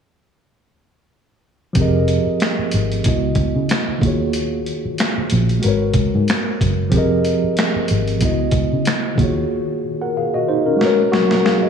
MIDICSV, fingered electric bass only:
0, 0, Header, 1, 3, 480
1, 0, Start_track
1, 0, Tempo, 645161
1, 1309, Time_signature, 4, 2, 24, 8
1, 8700, End_track
2, 0, Start_track
2, 0, Title_t, "Fingered electric bass"
2, 0, Program_c, 0, 33
2, 1311, Note_on_c, 0, 29, 98
2, 1618, Note_off_c, 0, 29, 0
2, 2037, Note_on_c, 0, 32, 71
2, 2233, Note_off_c, 0, 32, 0
2, 2283, Note_on_c, 0, 37, 79
2, 2476, Note_off_c, 0, 37, 0
2, 2501, Note_on_c, 0, 37, 80
2, 2613, Note_off_c, 0, 37, 0
2, 2646, Note_on_c, 0, 49, 74
2, 2734, Note_off_c, 0, 49, 0
2, 2994, Note_on_c, 0, 39, 70
2, 3499, Note_off_c, 0, 39, 0
2, 3960, Note_on_c, 0, 34, 77
2, 4155, Note_off_c, 0, 34, 0
2, 4202, Note_on_c, 0, 32, 84
2, 4396, Note_off_c, 0, 32, 0
2, 4426, Note_on_c, 0, 37, 72
2, 4536, Note_off_c, 0, 37, 0
2, 4574, Note_on_c, 0, 44, 84
2, 4659, Note_off_c, 0, 44, 0
2, 4923, Note_on_c, 0, 30, 71
2, 5153, Note_off_c, 0, 30, 0
2, 5153, Note_on_c, 0, 29, 108
2, 5459, Note_off_c, 0, 29, 0
2, 5884, Note_on_c, 0, 32, 79
2, 6126, Note_off_c, 0, 32, 0
2, 6126, Note_on_c, 0, 37, 75
2, 6318, Note_off_c, 0, 37, 0
2, 6345, Note_on_c, 0, 37, 74
2, 6455, Note_off_c, 0, 37, 0
2, 6492, Note_on_c, 0, 49, 68
2, 6578, Note_off_c, 0, 49, 0
2, 6836, Note_on_c, 0, 39, 75
2, 7032, Note_off_c, 0, 39, 0
2, 8700, End_track
3, 0, Start_track
3, 0, Title_t, "Muted fingered electric bass strokes"
3, 1686, Note_on_c, 9, 29, 37
3, 1760, Note_off_c, 9, 29, 0
3, 1925, Note_on_c, 9, 29, 33
3, 2000, Note_off_c, 9, 29, 0
3, 2890, Note_on_c, 9, 29, 36
3, 2965, Note_off_c, 9, 29, 0
3, 3611, Note_on_c, 9, 29, 38
3, 3685, Note_off_c, 9, 29, 0
3, 3852, Note_on_c, 9, 29, 31
3, 3927, Note_off_c, 9, 29, 0
3, 5534, Note_on_c, 9, 29, 37
3, 5608, Note_off_c, 9, 29, 0
3, 5772, Note_on_c, 9, 29, 36
3, 5846, Note_off_c, 9, 29, 0
3, 8700, End_track
0, 0, End_of_file